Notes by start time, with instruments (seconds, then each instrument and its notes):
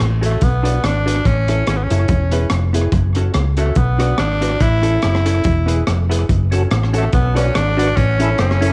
0.00 fingered electric bass A1, cross-stick
0.21 hollow-body jazz guitar C#4 F#4 A4 C#5, closed hi-hat
0.25 tenor saxophone A3
0.41 fingered electric bass B1, tenor saxophone B3, kick, closed hi-hat
0.63 hollow-body jazz guitar D4 F#4 B4 D5, closed hi-hat
0.82 fingered electric bass G#1, tenor saxophone D4, muted hollow-body jazz guitar stroke, cross-stick, closed hi-hat
1.06 hollow-body jazz guitar D4 F#4 B4 D5, closed hi-hat
1.25 fingered electric bass A1, tenor saxophone C#4, kick, closed hi-hat
1.48 hollow-body jazz guitar C#4 E4 A4 C#5, closed hi-hat
1.67 fingered electric bass G#1, tenor saxophone C#4, cross-stick, closed hi-hat
1.77 tenor saxophone B3
1.83 tenor saxophone C#4
1.90 fingered electric bass F#1, hollow-body jazz guitar C#4 E4 A4 C#5, closed hi-hat
2.08 fingered electric bass E1, kick, closed hi-hat
2.31 hollow-body jazz guitar B3 E4 G#4 B4, closed hi-hat
2.50 fingered electric bass F1, cross-stick, closed hi-hat
2.73 hollow-body jazz guitar B3 E4 G#4 B4, closed hi-hat
2.92 fingered electric bass F#1, kick, closed hi-hat
3.15 hollow-body jazz guitar C#4 F#4 A4 C#5, closed hi-hat
3.34 fingered electric bass C#2, muted hollow-body jazz guitar stroke, cross-stick, closed hi-hat
3.57 tenor saxophone A3, hollow-body jazz guitar C#4 F#4 A4 C#5, closed hi-hat
3.75 fingered electric bass B1, tenor saxophone B3, kick, closed hi-hat
3.98 hollow-body jazz guitar D4 F#4 B4 D5, cross-stick, closed hi-hat
4.18 fingered electric bass G#1, tenor saxophone D4, muted hollow-body jazz guitar stroke, cross-stick, closed hi-hat
4.41 hollow-body jazz guitar D4 F#4 B4 D5, closed hi-hat
4.60 fingered electric bass A1, tenor saxophone E4, kick, closed hi-hat
4.82 hollow-body jazz guitar C#4 E4 A4 C#5, closed hi-hat
5.02 fingered electric bass F#1, tenor saxophone E4, cross-stick, closed hi-hat
5.15 cross-stick
5.25 hollow-body jazz guitar C#4 E4 A4 C#5, closed hi-hat
5.44 fingered electric bass E1, kick, closed hi-hat
5.66 hollow-body jazz guitar B3 E4 G#4 B4, closed hi-hat
5.87 fingered electric bass F1, cross-stick, closed hi-hat
6.09 hollow-body jazz guitar B3 E4 G#4 B4, closed hi-hat
6.29 fingered electric bass F#1, kick, closed hi-hat
6.51 tonewheel organ C#4 F#4 A4, hollow-body jazz guitar C#4 F#4 A4 C#5, closed hi-hat
6.71 fingered electric bass A1, muted hollow-body jazz guitar stroke, cross-stick, closed hi-hat
6.83 cross-stick
6.93 hollow-body jazz guitar C#4 F#4 A4 C#5, tonewheel organ C#4 F#4 A4, closed hi-hat
6.97 tenor saxophone A3
7.13 fingered electric bass B1, tenor saxophone B3, kick, closed hi-hat
7.34 tenor saxophone C#4, tonewheel organ D4 F#4 B4, hollow-body jazz guitar D4 F#4 B4 D5, cross-stick, closed hi-hat
7.54 fingered electric bass G#1, tenor saxophone D4, muted hollow-body jazz guitar stroke, cross-stick, closed hi-hat
7.77 hollow-body jazz guitar D4 F#4 B4 D5, tonewheel organ D4 F#4 B4, closed hi-hat
7.97 fingered electric bass A1, tenor saxophone C#4, kick, closed hi-hat
8.19 tonewheel organ C#4 E4 A4, hollow-body jazz guitar C#4 E4 A4 C#5, closed hi-hat
8.38 fingered electric bass F#1, tenor saxophone C#4, cross-stick, closed hi-hat
8.51 cross-stick
8.61 tonewheel organ C#4 E4 A4, hollow-body jazz guitar C#4 E4 A4 C#5, closed hi-hat